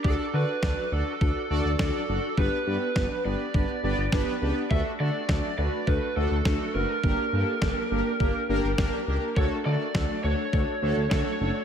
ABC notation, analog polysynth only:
X:1
M:4/4
L:1/8
Q:1/4=103
K:D
V:1 name="Analog polysynth"
[DFAd] [DFAd] [DFAd] [DFAd] [DFAd] [DFAd] [DFAd] [DFAd] | [B,DGB] [B,DGB] [B,DGB] [B,DGB] [B,DGB] [B,DGB] [B,DGB] [B,DGB] | [A,DFA] [A,DFA] [A,DFA] [A,DFB] [A,DFA] [A,DFA] [A,DFA] [A,DFB] | [_B,DG_B] [B,DGA] [B,DGA] [B,DGB] [B,DGB] [B,DGB] [B,DGB] [B,DGB] |
[A,DFA] [A,DFA] [A,DFA] [A,DFA] [A,DFA] [A,DFA] [A,DFA] [A,DFA] |]